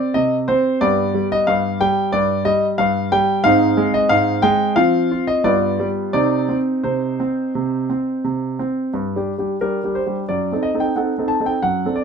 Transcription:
Already playing: C4 G4 D5
0.14 C3 D#5
0.48 C4 C5
0.81 G2 B3 G4 D5
1.14 G3
1.32 D#5
1.47 G2 F5
1.81 G3 G5
2.12 G2 D5
2.45 G3 D#5
2.78 G2 F5
3.12 G3 G5
3.44 G#2 C4 D#4 F5
3.77 G#3
3.94 D#5
4.09 G#2 F5
4.42 G#3 G5
4.76 F3 C4 F4 F5
5.11 F4
5.27 D#5
5.44 G2 B3 F4 D5
5.80 G3
6.13 C3 C4 D#4 D5
6.49 C4
6.84 C3 C5
7.20 C4
7.55 C3
7.90 C4
8.24 C3
8.59 C4
8.94 G2
9.16 G3 D4 G4
9.38 G3 D4 G4
9.61 G3 D4 G4 A#4
9.84 G3 D4 G4
9.95 C5
10.06 G3 D4 G4
10.29 F#2 D5
10.52 C4 D#4 A4
10.63 D#5
10.75 C4 D#4 A4
10.80 G5
10.96 C4 D#4 A4 F#5
11.18 C4 D#4 A4
11.28 A5
11.40 C4 D#4 A4
11.46 G5
11.62 F#2 F#5
11.86 C4 D4 A4
11.96 D5

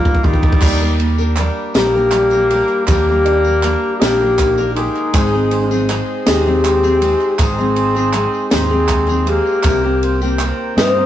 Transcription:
Already playing: D#3 G3 A#3 D#4 F4 G4 D#5 F5 A#5
0.05 kick, clap, tambourine
0.15 kick
0.24 D#3 G3 A#3 D#4 F4 G4, kick, clap
0.34 kick
0.43 kick, clap
0.52 kick
0.61 D#2 D#3 G3 A#3 D4 G4 A#4 A#5, kick, clap, crash, tambourine
0.81 A#3 A#4
1.00 A#3, ride
1.18 A#3 D4 A#4, tambourine
1.36 G3 A#3 D4 A#4, clap, ride, tambourine
1.74 A#1 D#3 G3 A#3 D4 D#4 G4, snare, ride, tambourine
1.78 A#4
1.95 A#3 D4 A#4
2.11 G3, clap, ride
2.31 D4 A#4, clap, tambourine
2.36 A#3
2.49 G3 A#3 G4, ride
2.54 D4 A#4
2.68 clap
2.86 D#2 D#3 G3 A#3 G4, kick, clap, ride, tambourine
2.90 G3 A#3 D4 A#4
3.09 A#3 D4 A#4
3.26 D4, ride
3.45 A#3 D4 A#4, tambourine
3.62 G3 A#3 D4, clap, ride, tambourine
3.66 A#4
3.98 A#1 D#3 A#3 D#4 G4, snare, ride, tambourine
4.02 G3 A#3 D4 A#4
4.20 A#3 D4 A#4
4.39 D#3, kick, clap, ride, tambourine
4.58 A#3 D4 A#4, clap, tambourine
4.74 G#3 D#4 G4, ride
4.78 A#3 A#4
4.96 clap
5.13 G#1 G#2 D#3 G#3 C4 D#4 G#4 D#5, kick, clap, ride, tambourine
5.34 G#3 C4 D#4 G#4
5.51 C4, ride
5.71 G#3 C4 D#4 G#4, tambourine
5.89 G#3 C4 D#4 G#4, clap, ride, tambourine
6.27 D#2 G#2 D#3 G#3 C4 D#4 G4 G#4, snare, ride, tambourine
6.46 G#3 C4 D#4 G#4
6.64 G#3, clap, ride, tambourine
6.84 G#3 C4 D#4 G#4, clap, tambourine
7.01 G#3 C4 D#4 G#4, ride
7.21 clap
7.38 G#1 G#2 D#3 G#3 C4 D#4 G#4, kick, clap, ride, tambourine
7.58 G#3 C4 D#4 G#4, tambourine
7.76 C4, ride
7.96 G#3 C4 D#4 G#4, clap, tambourine
8.13 G#3 C4 D#4 G#4, clap, ride
8.34 tambourine
8.51 D#2 G#2 D#3 G#3 C4 D#4 G#4, snare, clap, ride, tambourine
8.71 G#3 C4 D#4 G#4
8.88 G#3, kick, clap, ride
9.07 G#3 C4 D#4 G#4, clap, tambourine
9.26 G#3 A#3 C4 D#4 G4 G#4, ride
9.46 tambourine
9.62 C2 C3 D#3 A#3 C4 G4 A#4 G5, kick, clap, ride, tambourine
9.84 A#3 C4 G4
10.03 C4, ride
10.21 A#3 C4 G4, tambourine
10.39 D#3 A#3 C4 G4, clap, ride, tambourine
10.77 G2 C3 D#3 A#3 C4 D#4 G4 B4, snare, ride, tambourine
10.91 C5
10.97 A#3 C4 G4

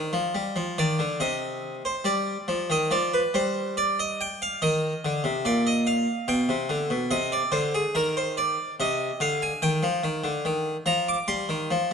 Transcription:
Already playing: D#3 C5
0.13 F3
0.35 G3
0.56 F3
0.78 D#3 D5
0.99 D3
1.20 C3 D#5
1.85 C5
2.04 G3 D5
2.48 F3
2.70 D#3 D#5
2.91 F3 D5
3.14 B4
3.34 G3 C5
3.77 D5
3.99 D#5
4.21 G5
4.42 F5
4.62 D#3 D#5
5.05 D3
5.24 C3
5.45 A#2 D5
5.67 D#5
5.87 F5
6.28 B2 G5
6.49 C3
6.69 D3
6.90 B2
7.11 C3 D#5
7.32 D5
7.52 D3 C5
7.75 G#4
7.95 D#3 A#4
8.17 C5
8.37 D5
8.80 C3 D#5
9.20 D3 F5
9.42 G#5
9.62 D#3 G5
9.83 F3
10.04 D#3
10.24 D3
10.45 D#3
10.86 F3 A#5
11.08 D6
11.28 G3 C6
11.49 D#3
11.71 F3

